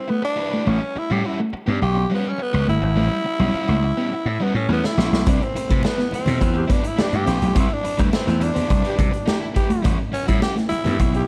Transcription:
Already playing: C4
0.08 A3 B3, muted overdriven electric guitar stroke
0.22 D4, muted overdriven electric guitar stroke
0.36 E4 G4 B4, muted clean electric guitar stroke
0.51 A3 E4 G4 B4
0.66 A1 G3 A3 C#4 F#4
0.81 muted overdriven electric guitar stroke
0.96 E4, muted overdriven electric guitar stroke, muted slap bass stroke, muted clean electric guitar stroke
1.10 A2 G3 C#4 F#4 G4
1.24 G3 C#4 E4 F#4
1.40 A3
1.53 muted overdriven electric guitar stroke, muted slap bass stroke, muted clean electric guitar stroke
1.66 G2 G3 B3 C#4 G4
1.82 B1 G4, muted overdriven electric guitar stroke
1.95 muted overdriven electric guitar stroke
2.10 G3 C#4 F#4
2.15 B3
2.25 C#4, muted overdriven electric guitar stroke
2.38 B3, muted overdriven electric guitar stroke
2.53 C#2 G3 C#4 F#4
2.68 G1 A3 E4, muted overdriven electric guitar stroke
2.82 G#1, muted overdriven electric guitar stroke
2.96 A1 G3 A3 C#4 F#4
3.11 muted overdriven electric guitar stroke
3.25 muted overdriven electric guitar stroke, muted clean electric guitar stroke
3.39 B1 G3 C#4 F#4
3.53 G3 C#4 F#4, muted slap bass stroke
3.68 C#2 A3
3.83 muted overdriven electric guitar stroke, muted clean electric guitar stroke
3.97 G3 B3 C#4 G4
4.12 muted overdriven electric guitar stroke
4.25 A2, muted overdriven electric guitar stroke
4.40 G3 B3 C#4 F#4
4.54 A2 C#4, muted overdriven electric guitar stroke
4.69 E2 G3 A3 C#4 F#4
4.73 B3
4.84 E4, muted overdriven electric guitar stroke, snare
4.97 A#1 G3 C#4 F#4, muted clean electric guitar stroke, snare
5.12 B1 A3, muted overdriven electric guitar stroke, snare
5.26 C2 C4 D4 E4 G4 B4, kick, closed hi-hat, muted conga
5.42 C4, muted overdriven electric guitar stroke, closed hi-hat
5.55 muted slap bass stroke, muted clean electric guitar stroke, muted overdriven electric guitar stroke, closed hi-hat
5.69 C3 A3 E4 G4 B4, kick, closed hi-hat
5.83 B3 E4 G4 B4, snare, high conga
5.98 B3, snare, closed hi-hat
6.11 C4, muted clean electric guitar stroke, muted overdriven electric guitar stroke, muted slap bass stroke, closed hi-hat, muted conga
6.26 B2 C4 E4 G4 C5, closed hi-hat, low conga
6.41 E2, muted overdriven electric guitar stroke, kick, closed hi-hat, muted conga
6.54 G4, muted overdriven electric guitar stroke
6.67 B3 E4 G4 B4, kick, closed hi-hat, muted conga
6.73 D4
6.84 E4, muted overdriven electric guitar stroke, closed hi-hat
6.97 E4 G4 B4, snare, high conga
7.02 D4
7.12 G2 G4, muted overdriven electric guitar stroke, closed hi-hat
7.26 A#1 C4 E4 G4 B4, snare, closed hi-hat
7.42 B1, muted overdriven electric guitar stroke, closed hi-hat, high conga
7.54 C2 C4 E4 G4 B4, kick, closed hi-hat, muted conga
7.60 E4
7.70 D4, muted overdriven electric guitar stroke
7.84 muted overdriven electric guitar stroke, muted clean electric guitar stroke, closed hi-hat
7.97 D2 G3 E4 G4 B4, kick, closed hi-hat
8.12 C4 E4 G4 B4, muted slap bass stroke, snare, high conga
8.27 E2 A3, snare, closed hi-hat
8.40 D4, muted overdriven electric guitar stroke, muted clean electric guitar stroke, closed hi-hat, muted conga
8.54 B3 E4 G4 C5, closed hi-hat, low conga
8.68 C2, muted overdriven electric guitar stroke, kick, closed hi-hat, muted conga
8.82 E4 G4 B4, closed hi-hat
8.97 C3 G3, muted overdriven electric guitar stroke, kick, closed hi-hat, muted conga, low conga
9.11 muted overdriven electric guitar stroke, closed hi-hat
9.26 A3 E4 G4 B4, snare, high conga
9.41 muted overdriven electric guitar stroke
9.55 E4 G4 B4, muted clean electric guitar stroke, kick, closed hi-hat
9.69 A3, muted overdriven electric guitar stroke, closed hi-hat, high conga
9.82 A1 G3 A3 C#4 F#4, kick, closed hi-hat, muted conga
9.98 muted overdriven electric guitar stroke
10.12 C#4, muted overdriven electric guitar stroke, muted clean electric guitar stroke, muted slap bass stroke, closed hi-hat
10.26 A2 G3 C#4 E4 F#4, kick, closed hi-hat
10.40 G3 C#4 F#4 G4, snare, high conga
10.56 A3, snare, closed hi-hat
10.69 E4, muted overdriven electric guitar stroke, muted clean electric guitar stroke, muted slap bass stroke, closed hi-hat, muted conga
10.84 G2 G3 B3 C#4 G4, closed hi-hat, low conga
10.98 B1, muted overdriven electric guitar stroke, kick, closed hi-hat, muted conga
11.13 G4, muted overdriven electric guitar stroke, closed hi-hat

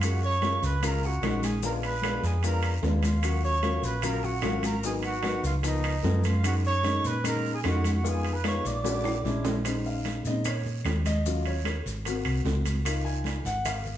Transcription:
Already playing: F#2
0.01 G#3 A#3 C#4 F4 F#4 F#5, high bongo, high conga, high timbale, long guiro, claves, maracas
0.22 C#5 C#6, high conga, maracas
0.42 G#3 A#3 C#4 F4, high bongo, high conga, high timbale, low timbale, short guiro, maracas
0.62 C#2 B4 B5, high bongo, high conga, short guiro, maracas
0.82 G#3 A#3 C#4 F4 A#4 A#5, high bongo, high conga, low conga, high timbale, long guiro, claves, maracas
1.03 F#4 F#5, high bongo, high conga, low conga, maracas
1.22 A#1 G#3 A#3 C#4 D#4, high bongo, low bongo, high conga, high timbale, low timbale, short guiro, claves, maracas
1.43 G#4 G#5, high bongo, high conga, high timbale, short guiro, maracas
1.62 G#3 B3 D4 F4 A#4 A#5, high bongo, high conga, long guiro, maracas
1.83 B4 B5, high timbale, maracas
2.02 G#3 B3 D4 F4, high bongo, high conga, high timbale, low timbale, short guiro, claves, maracas
2.23 F2 G#4 G#5, high bongo, short guiro, maracas
2.43 G#3 B3 D4 F4 A#4 A#5, high bongo, high conga, high timbale, long guiro, maracas
2.63 high bongo, high conga, high timbale, claves, maracas
2.83 D#2 G#3 B3 D4 F4, high bongo, high conga, low timbale, short guiro, maracas
3.03 F4 F5, low bongo, high conga, high timbale, short guiro, maracas
3.22 F#3 A#3 C#4 F4 F#4 F#5, high bongo, high timbale, long guiro, claves, maracas
3.44 C#5 C#6, high conga, maracas
3.63 F#3 A#3 C#4 F4, high bongo, high conga, high timbale, low timbale, short guiro, maracas
3.82 A#1 B4 B5, high bongo, high conga, short guiro, maracas
4.02 F#3 A#3 C#4 F4 A#4, high bongo, high conga, low conga, high timbale, long guiro, claves, maracas
4.07 A#5
4.23 F#4 F#5, high bongo, high conga, low conga, maracas
4.42 G#1 F#3 A#3 C#4 F4, high bongo, low bongo, high conga, high timbale, low timbale, short guiro, claves, maracas
4.63 A#4 A#5, high bongo, high conga, high timbale, short guiro, maracas
4.84 F#3 A#3 B3 D#4 G#4 G#5, high bongo, long guiro, maracas
5.03 F#4 F#5, high conga, high timbale, maracas
5.23 F#3 A#3 B3 D#4, high bongo, high conga, high timbale, low timbale, short guiro, claves, maracas
5.43 C#2 F4 F5, high bongo, short guiro, maracas
5.63 F3 A#3 B3 D#4 D#5, high bongo, high conga, high timbale, long guiro, maracas
5.67 D#4
5.84 high bongo, high conga, high timbale, claves, maracas
6.03 F#2 F3 A#3 B3 C#4, high bongo, low bongo, high conga, low timbale, short guiro, maracas
6.24 F4 F5, high bongo, high conga, high timbale, short guiro, maracas
6.43 G#3 A#3 C#4 D#4 F#4 F#5, high bongo, high conga, high timbale, long guiro, claves, maracas
6.65 C#5 C#6, maracas
6.83 G#3 A#3 C#4 D#4, high bongo, high conga, high timbale, low timbale, short guiro, maracas
7.04 A#2 B4 B5, high bongo, high conga, short guiro, maracas
7.24 G#3 A#3 C#4 D#4 A#4, high bongo, high conga, low conga, high timbale, long guiro, claves, maracas
7.28 A#5
7.44 high bongo, high conga, maracas
7.54 G#4 G#5
7.64 F2 G#3 A#3 C#4 D#4 F#4, high bongo, low bongo, high conga, high timbale, low timbale, short guiro, claves, maracas
7.68 F#5
7.84 high bongo, high conga, high timbale, short guiro, maracas
7.93 F#4 F#5
8.03 G#3 B3 D#4 F4 G#4, high bongo, long guiro, maracas
8.08 G#5
8.24 high conga, high timbale, maracas
8.34 B4 B5
8.44 G#3 B3 D#4 F4 C#5 C#6, high bongo, high conga, high timbale, low timbale, short guiro, claves, maracas
8.65 A#1 D5 D6, high bongo, short guiro, maracas
8.84 G#3 C#4 D4 F#4, high bongo, high conga, high timbale, long guiro, maracas
9.04 high bongo, high conga, high timbale, claves, maracas
9.24 A#1 G#3 C#4 D4 E4, low bongo, high conga, short guiro, maracas
9.44 low bongo, high conga, low timbale, short guiro, maracas
9.65 G#3 C#4 D#4 C5, high bongo, high timbale, long guiro, claves, maracas
9.85 F5, high conga, maracas
10.05 high bongo, high conga, high timbale, low timbale, short guiro, maracas
10.25 A#2 G#3 C4 C#4 D#4 D#5, high bongo, high conga, short guiro, maracas
10.45 C#5, high bongo, high conga, low conga, high timbale, long guiro, claves, maracas
10.65 high bongo, high conga, low conga, maracas
10.85 D#2, high bongo, low bongo, high conga, high timbale, low timbale, short guiro, claves, maracas
11.05 D#5, high bongo, high conga, high timbale, short guiro, maracas
11.26 F#3 C#4 F4, high bongo, long guiro, maracas
11.45 C#5, high timbale, maracas
11.64 high bongo, high conga, high timbale, low timbale, short guiro, claves, maracas
11.86 G#1, high bongo, short guiro, maracas
12.04 A#3 C4 F#4, high bongo, high conga, high timbale, long guiro, maracas
12.24 C2, high bongo, high conga, high timbale, claves, maracas
12.44 C#2, high bongo, low bongo, high conga, low timbale, short guiro, maracas
12.65 high bongo, high conga, high timbale, short guiro, maracas
12.85 A#3 D#4 F4, high bongo, high timbale, long guiro, claves, maracas
13.05 G#5, high conga, maracas
13.24 high bongo, high conga, high timbale, low timbale, short guiro, maracas
13.45 G#1 F#5, high bongo, high conga, short guiro, maracas
13.65 F5, high bongo, high conga, low conga, high timbale, long guiro, claves, maracas
13.85 high bongo, high conga, low conga, maracas

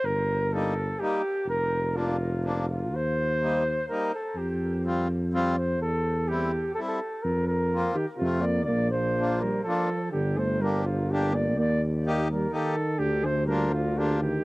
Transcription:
0.04 G1 A#4
0.53 G3 A#3 D#4 A4
1.00 G3 A#3 D#4 G4
1.46 F1 A#4
1.94 F3 A#3 D4 F4
2.43 F3 A#3 D4
2.70 F4
2.91 D#2
2.96 C5
3.41 G3 A#3 D#4
3.89 G3 A#3 D#4 A#4
4.15 A4
4.35 F2 G4
4.85 G3 C4 F4
5.33 G3 C4 F4
5.51 D5
5.58 C5
5.81 E2 A4
6.28 G3 C4 E4 G4
6.74 G3 A4
6.79 C4 E4
6.88 A4
7.23 F2 A#4
7.47 A#4
7.73 A#3 C4 F4
7.93 D#3 G4
8.17 C3 F4
8.21 F2 A3 C4 F4
8.41 A#3 D5
8.64 A#3 D5
8.70 A#1
8.91 F3 C5
9.19 A#3 D4 F4
9.40 G3 A#4
9.64 F3 A#3 D4 A4
9.69 F4
10.11 G1 D3 G4
10.37 A3 C5
10.60 G3 A#3 D4 G4 A#4
10.85 D3 F4
11.09 D3 A#3 D4 G4
11.32 A#3 D5
11.56 D#2 A#3 D5
12.06 A#3 D#4 G4
12.29 G3 A#4
12.49 D#3 A#3 D#4
12.54 G4 A4
12.98 D2 D3 G4
13.24 A3 C5
13.45 G3 A#3 A#4
13.49 D4 F4
13.71 D3 F4
13.95 D3 A#3 D4 F4 G4
14.19 D#3 G4

